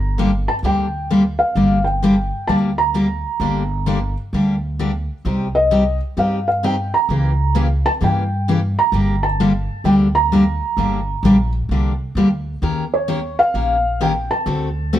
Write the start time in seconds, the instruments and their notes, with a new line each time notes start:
Already playing: upright bass G1, felt piano A#5
0.18 steel-string acoustic guitar D3 G3 A#3 D4 G4
0.48 felt piano A5
0.63 upright bass D2, steel-string acoustic guitar D3 G3 A#3 D4 G4, felt piano G5
1.10 steel-string acoustic guitar D3 G3 A#3 D4 G4
1.39 felt piano F5
1.55 upright bass G1, steel-string acoustic guitar D3 G3 A#3 D4 G4
1.84 felt piano G5
2.03 steel-string acoustic guitar D3 G3 A#3 D4 G4
2.47 upright bass D2, steel-string acoustic guitar D3 G3 A#3 D4 G4, felt piano A5
2.78 felt piano A#5
2.94 steel-string acoustic guitar D3 G3 A#3 D4 G4
3.40 upright bass G1, steel-string acoustic guitar D3 G3 A#3 D4 G4
3.86 steel-string acoustic guitar D3 G3 A#3 D4 G4
4.33 upright bass D2, steel-string acoustic guitar D3 G3 A#3 D4 G4
4.79 steel-string acoustic guitar D3 G3 A#3 D4 G4
5.25 upright bass C2, steel-string acoustic guitar C3 G3 C4 D#4 G4
5.55 felt piano D#5
5.71 steel-string acoustic guitar C3 G3 C4 D#4 G4
6.17 upright bass G2, steel-string acoustic guitar C3 G3 C4 D#4 G4, felt piano F5
6.48 felt piano F5
6.63 steel-string acoustic guitar C3 G3 C4 D#4 G4, felt piano G5
6.94 felt piano A#5
7.09 upright bass C#2, steel-string acoustic guitar C#3 E3 A#3 C#4 G4
7.55 steel-string acoustic guitar C#3 E3 A#3 C#4 G4
7.86 felt piano A5
8.01 upright bass G2, steel-string acoustic guitar C#3 E3 A#3 C#4 G4, felt piano G5
8.48 steel-string acoustic guitar C#3 E3 A#3 C#4 G4
8.79 felt piano A#5
8.92 upright bass G1, steel-string acoustic guitar D3 G3 A#3 D4 G4
9.23 felt piano A5
9.40 steel-string acoustic guitar D3 G3 A#3 D4 G4
9.84 upright bass D2, steel-string acoustic guitar D3 G3 A#3 D4 G4, felt piano G5
10.15 felt piano A#5
10.32 steel-string acoustic guitar D3 G3 A#3 D4 G4
10.77 upright bass G1, steel-string acoustic guitar D3 G3 A#3 D4 G4
11.23 upright bass A#1, steel-string acoustic guitar D3 G3 A#3 D4 G4
11.69 upright bass C2, steel-string acoustic guitar D3 G3 A#3 D4 G4
12.15 upright bass D2, steel-string acoustic guitar D3 G3 A#3 D4 G4
12.62 upright bass D#2, steel-string acoustic guitar D#3 A#3 C#4 G4 A#4
12.94 felt piano C#5
13.08 steel-string acoustic guitar D#3 A#3 C#4 G4 A#4
13.39 felt piano F5
13.54 upright bass A#1, steel-string acoustic guitar D#3 A#3 C#4 G4 A#4
14.01 steel-string acoustic guitar D#3 A#3 C#4 G4 A#4, felt piano G5
14.31 felt piano A5
14.46 upright bass D2, steel-string acoustic guitar D3 A3 C4 F#4 A4
14.93 steel-string acoustic guitar D3 A3 C4 F#4 A4